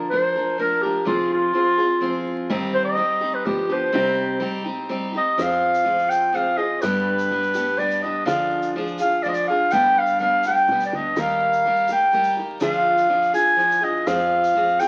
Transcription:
Already playing: fm bass A#1, steel-string acoustic guitar A#2 D3 F3 A#3 D4 A#4
0.10 steel-string acoustic guitar F3 A#3 D4 A#4, clarinet C5
0.36 steel-string acoustic guitar F3 A#3 D4 A#4
0.58 steel-string acoustic guitar F3 A#3 D4 A#4, clarinet A#4
0.82 steel-string acoustic guitar F3 A#3 D4 A#4, clarinet G4
1.05 fm bass F1, steel-string acoustic guitar F3 C4 F4 G#4, clarinet F4
1.33 clarinet F4
1.53 steel-string acoustic guitar F3 C4 F4 G#4
1.78 steel-string acoustic guitar C4 F4 G#4
2.00 steel-string acoustic guitar F3 C4 F4 G#4
2.50 fm bass G1, steel-string acoustic guitar G2 D#3 G3 C4 D#4 G4
2.74 clarinet C5
2.85 clarinet D#5
2.97 steel-string acoustic guitar G3 C4 D#4 G4
3.21 steel-string acoustic guitar G3 C4 D#4 G4
3.34 clarinet B4
3.45 fm bass G1, steel-string acoustic guitar F3 B3 D4 G4, clarinet G4
3.69 steel-string acoustic guitar F3 B3 D4 G4, clarinet C5
3.92 fm bass C2, steel-string acoustic guitar C3 G3 C4 D#4 G4
4.40 steel-string acoustic guitar G3 C4 D#4 G4
4.64 steel-string acoustic guitar C4 D#4 G4
4.89 steel-string acoustic guitar G3 C4 D#4 G4
5.13 steel-string acoustic guitar C4 D#4 G4
5.17 clarinet D#5
5.37 fm bass F2, steel-string acoustic guitar F3 C4 F4 G#4, shaker
5.42 clarinet F5
5.51 shaker
5.74 shaker
5.85 steel-string acoustic guitar F3 C4 F4 G#4
5.99 shaker
6.09 clarinet G5, shaker
6.32 steel-string acoustic guitar F3 C4 F4 G#4, clarinet F5, shaker
6.57 steel-string acoustic guitar C4 F4 G#4, clarinet D#5
6.81 steel-string acoustic guitar G2 D3 G3 B3 D4 G4, fm bass G2, clarinet B4, shaker
6.94 shaker
7.19 shaker
7.31 steel-string acoustic guitar G3 B3 D4 G4
7.43 shaker
7.54 steel-string acoustic guitar G3 B3 D4 G4, shaker
7.78 steel-string acoustic guitar G3 B3 D4 G4, clarinet D5, shaker
7.91 shaker
8.02 steel-string acoustic guitar G3 B3 D4 G4, clarinet D#5
8.25 fm bass D2, steel-string acoustic guitar D3 F3 D4 F4 G#4, clarinet F5, shaker
8.62 shaker
8.76 steel-string acoustic guitar F3 D4 F4 G#4
8.87 shaker
8.98 steel-string acoustic guitar D4 F4 G#4, clarinet F5, shaker
9.23 steel-string acoustic guitar F3 D4 F4 G#4, clarinet D5, shaker
9.28 clarinet D#5
9.34 clarinet D5, shaker
9.48 steel-string acoustic guitar F4 G#4, clarinet F5
9.52 steel-string acoustic guitar D4
9.71 fm bass G1, steel-string acoustic guitar G2 D3 G3 B3 D4 G4, clarinet G5, shaker
9.99 clarinet F5
10.06 shaker
10.19 steel-string acoustic guitar G3 B3 D4 G4, clarinet F5, shaker
10.43 steel-string acoustic guitar D4 G4, clarinet G5, shaker
10.47 steel-string acoustic guitar G3 B3
10.56 shaker
10.68 fm bass B1, steel-string acoustic guitar G3 B3, shaker
10.73 steel-string acoustic guitar D4 G4
10.80 shaker
10.86 clarinet D5
10.93 fm bass D2, steel-string acoustic guitar D4 G4, clarinet D#5
10.97 steel-string acoustic guitar G3 B3
11.16 fm bass D#2, steel-string acoustic guitar D#3 G3 A#3 D#4 G4, clarinet F5, shaker
11.28 shaker
11.53 shaker
11.65 steel-string acoustic guitar G3 A#3 D#4 G4
11.76 shaker
11.88 steel-string acoustic guitar D#4 G4, shaker
11.92 steel-string acoustic guitar A#3, clarinet G5
12.12 steel-string acoustic guitar G3 A#3 D#4 G4, shaker
12.24 shaker
12.37 steel-string acoustic guitar A#3 D#4 G4
12.60 fm bass D2, steel-string acoustic guitar D3 F3 D4 F4 G#4, clarinet F5, shaker
12.73 shaker
12.98 shaker
13.09 steel-string acoustic guitar F3 D4 F4 G#4
13.23 shaker
13.33 steel-string acoustic guitar D4 F4 G#4, clarinet G#5, shaker
13.56 steel-string acoustic guitar F3 D4 F4 G#4, shaker
13.71 shaker
13.81 steel-string acoustic guitar D4 F4 G#4, clarinet D#5
14.07 fm bass F2, steel-string acoustic guitar F3 C4 F4 G#4, clarinet F5, shaker
14.20 shaker
14.44 shaker
14.55 steel-string acoustic guitar F3 C4 F4 G#4
14.67 shaker
14.80 steel-string acoustic guitar C4 F4 G#4, clarinet G5, shaker

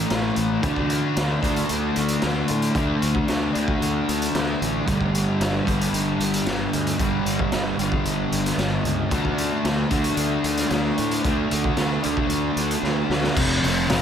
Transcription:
Already playing: distorted electric guitar A2 E3 A3
0.10 fingered electric bass A1, snare, closed hi-hat
0.36 fingered electric bass A1, closed hi-hat
0.62 fingered electric bass D2, distorted electric guitar D3 A3, kick, closed hi-hat
0.67 distorted electric guitar D4
0.76 kick
0.90 closed hi-hat
1.16 fingered electric bass D2, snare, closed hi-hat
1.42 fingered electric bass D2, distorted electric guitar D3 A3 D4, kick, closed hi-hat
1.56 closed hi-hat
1.69 fingered electric bass D2, closed hi-hat
1.96 fingered electric bass D2, closed hi-hat
2.08 closed hi-hat
2.22 fingered electric bass D2, snare, closed hi-hat
2.48 fingered electric bass A2, closed hi-hat
2.62 closed hi-hat
2.75 fingered electric bass D2, distorted electric guitar D3 A3 D4, kick, closed hi-hat
3.02 fingered electric bass D2, closed hi-hat
3.15 kick
3.28 fingered electric bass D2, snare, closed hi-hat
3.53 fingered electric bass D2, distorted electric guitar A3 D4, closed hi-hat
3.57 distorted electric guitar D3
3.68 kick
3.81 fingered electric bass D2, closed hi-hat
4.08 fingered electric bass D2, closed hi-hat
4.22 closed hi-hat
4.34 fingered electric bass D2, snare, closed hi-hat
4.61 fingered electric bass A1, closed hi-hat
4.86 fingered electric bass G1, distorted electric guitar G2 D3 G3, kick, closed hi-hat
5.01 kick
5.15 closed hi-hat
5.40 fingered electric bass G1, snare, closed hi-hat
5.65 fingered electric bass G1, distorted electric guitar G2 D3 G3, kick, closed hi-hat
5.81 closed hi-hat
5.93 fingered electric bass G1, closed hi-hat
6.19 fingered electric bass G1, closed hi-hat
6.34 closed hi-hat
6.46 fingered electric bass G1, snare, closed hi-hat
6.73 fingered electric bass D2, closed hi-hat
6.87 closed hi-hat
6.98 fingered electric bass G1, distorted electric guitar G2 D3, kick, closed hi-hat
7.02 distorted electric guitar G3
7.25 fingered electric bass G1, closed hi-hat
7.39 kick
7.52 fingered electric bass G1, snare, closed hi-hat
7.78 fingered electric bass G1, distorted electric guitar D3 G3, closed hi-hat
7.84 distorted electric guitar G2
7.92 kick
8.05 fingered electric bass G1, closed hi-hat
8.31 fingered electric bass G1, closed hi-hat
8.46 snare, closed hi-hat
8.57 fingered electric bass G1, snare, closed hi-hat
8.83 fingered electric bass C#2, closed hi-hat
9.10 fingered electric bass D2, distorted electric guitar D3 A3, kick, closed hi-hat
9.14 distorted electric guitar D4
9.25 kick
9.38 closed hi-hat
9.65 fingered electric bass D2, snare, closed hi-hat
9.90 fingered electric bass D2, distorted electric guitar D3 A3 D4, kick, closed hi-hat
10.04 closed hi-hat
10.17 fingered electric bass D2, closed hi-hat
10.44 fingered electric bass D2, closed hi-hat
10.57 snare, closed hi-hat
10.70 fingered electric bass D2, snare, closed hi-hat
10.98 fingered electric bass A2, closed hi-hat
11.11 closed hi-hat
11.24 fingered electric bass D2, distorted electric guitar D3 A3 D4, kick, closed hi-hat
11.51 fingered electric bass D2, closed hi-hat
11.64 kick
11.77 fingered electric bass D2, snare, closed hi-hat
12.03 fingered electric bass D2, distorted electric guitar D3 A3 D4, closed hi-hat
12.17 kick
12.29 fingered electric bass D2, closed hi-hat
12.56 fingered electric bass D2, closed hi-hat
12.71 closed hi-hat
12.83 fingered electric bass D2, snare
13.09 fingered electric bass D2, snare
13.24 snare
13.36 fingered electric bass F1, distorted electric guitar F2 C3 F3, kick, crash
13.63 fingered electric bass F1, distorted electric guitar C3 F3, open hi-hat
13.89 fingered electric bass F1, distorted electric guitar F2 C3 F3, snare, open hi-hat

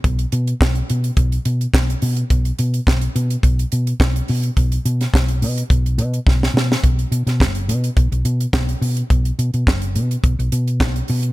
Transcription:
0.04 fingered electric bass B1, kick, closed hi-hat
0.19 closed hi-hat
0.32 fingered electric bass B2, closed hi-hat
0.47 closed hi-hat
0.61 fingered electric bass B1, kick, snare, clap
0.75 closed hi-hat
0.90 fingered electric bass B2, closed hi-hat
1.04 closed hi-hat
1.17 fingered electric bass B1, kick, closed hi-hat
1.32 closed hi-hat
1.45 fingered electric bass B2, closed hi-hat
1.61 closed hi-hat
1.74 fingered electric bass B1, kick, snare, clap
1.90 closed hi-hat
2.02 fingered electric bass B2, open hi-hat
2.17 closed hi-hat
2.30 fingered electric bass B1, kick, closed hi-hat
2.45 closed hi-hat
2.59 fingered electric bass B2, closed hi-hat
2.74 closed hi-hat
2.87 fingered electric bass B1, kick, snare, clap
3.01 closed hi-hat
3.16 fingered electric bass B2, closed hi-hat
3.30 closed hi-hat
3.43 fingered electric bass B1, kick, closed hi-hat
3.59 closed hi-hat
3.72 fingered electric bass B2, closed hi-hat
3.87 closed hi-hat
4.00 fingered electric bass B1, kick, snare, clap
4.16 closed hi-hat
4.28 fingered electric bass B2, open hi-hat
4.43 closed hi-hat
4.57 fingered electric bass B1, kick, closed hi-hat
4.72 closed hi-hat
4.85 fingered electric bass B2, closed hi-hat
5.01 snare, closed hi-hat
5.14 fingered electric bass B1, kick, snare, clap
5.28 closed hi-hat
5.42 fingered electric bass B2, open hi-hat
5.58 closed hi-hat
5.70 fingered electric bass B1, kick, closed hi-hat
5.86 closed hi-hat
5.98 fingered electric bass B2, closed hi-hat
6.14 closed hi-hat
6.27 fingered electric bass B1, kick, snare
6.43 snare
6.54 fingered electric bass B2, snare
6.72 snare
6.84 fingered electric bass B1, kick, closed hi-hat
6.99 closed hi-hat
7.12 fingered electric bass B2, closed hi-hat
7.27 fingered electric bass B2, snare, closed hi-hat
7.40 fingered electric bass F#1, kick, snare, clap
7.55 closed hi-hat
7.69 fingered electric bass B2, closed hi-hat
7.84 closed hi-hat
7.97 fingered electric bass B1, kick, closed hi-hat
8.12 fingered electric bass B1, closed hi-hat
8.25 fingered electric bass B2, closed hi-hat
8.40 closed hi-hat
8.53 fingered electric bass B1, kick, snare, clap
8.69 closed hi-hat
8.81 fingered electric bass B2, open hi-hat
8.97 closed hi-hat
9.10 fingered electric bass B1, kick, closed hi-hat
9.25 closed hi-hat
9.39 fingered electric bass B2, closed hi-hat
9.54 fingered electric bass B2, closed hi-hat
9.67 fingered electric bass F#1, kick, snare, clap
9.82 closed hi-hat
9.96 fingered electric bass B2, closed hi-hat
10.11 closed hi-hat
10.24 fingered electric bass B1, kick, closed hi-hat
10.39 fingered electric bass B1, closed hi-hat
10.52 fingered electric bass B2, closed hi-hat
10.68 closed hi-hat
10.80 fingered electric bass B1, kick, snare, clap
10.96 closed hi-hat
11.08 fingered electric bass B2, open hi-hat
11.23 closed hi-hat

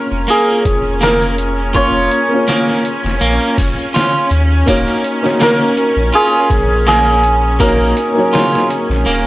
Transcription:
Already playing: felt piano A#3 C#4 F4 C#5, string section C#4, santur A#4
0.12 sub bass F1, shaker
0.28 clean electric guitar A#3, santur G#4, closed hi-hat, shaker
0.65 sub bass F1, kick, closed hi-hat, shaker
0.84 shaker
1.01 clean electric guitar A#3, santur A#4, snare, closed hi-hat, shaker
1.22 closed hi-hat
1.37 closed hi-hat, shaker
1.58 shaker
1.74 felt piano A#3 C#4 F4 C#5, clean electric guitar F4, santur C#5, kick, closed hi-hat, shaker
1.95 shaker
2.12 closed hi-hat, shaker
2.29 felt piano A#3 C#4, shaker
2.33 felt piano F4 C#5
2.47 clean electric guitar A#3, snare, closed hi-hat, shaker
2.67 snare, shaker
2.84 closed hi-hat, shaker
3.04 sub bass F1, snare, shaker
3.21 sub bass A#1, clean electric guitar A#3, closed hi-hat, shaker
3.40 shaker
3.57 sub bass F1, kick, open hi-hat, shaker
3.76 shaker
3.94 clean electric guitar F4, snare, closed hi-hat, shaker
4.29 sub bass D#2, closed hi-hat, shaker
4.50 shaker
4.66 sub bass D#1, felt piano A#3 D#4 F#4 C#5, clean electric guitar A#3, kick, closed hi-hat, shaker
4.87 closed hi-hat, shaker
5.04 closed hi-hat, shaker
5.22 felt piano A#3 D#4 F#4 C#5, snare, shaker
5.40 clean electric guitar A#3, santur A#4, snare, closed hi-hat, shaker
5.60 shaker
5.77 closed hi-hat, shaker
5.96 sub bass A#1, shaker
6.14 clean electric guitar F4, santur G#4, closed hi-hat, shaker
6.50 sub bass A#1, kick, closed hi-hat, shaker
6.70 shaker
6.87 clean electric guitar A#3, santur G#4, snare, closed hi-hat, shaker
7.07 closed hi-hat
7.23 closed hi-hat, shaker
7.43 shaker
7.59 felt piano A#3 D#4 F#4 C#5, clean electric guitar A#3, santur A#4, kick, closed hi-hat, shaker
7.80 shaker
7.97 closed hi-hat, shaker
8.14 felt piano F#3 A#3 D#4, shaker
8.20 felt piano C#5
8.33 clean electric guitar F4, snare, closed hi-hat, shaker
8.54 snare, shaker
8.70 closed hi-hat, shaker
8.90 sub bass A#1, snare, shaker
9.06 sub bass D#1, clean electric guitar A#3, closed hi-hat, shaker

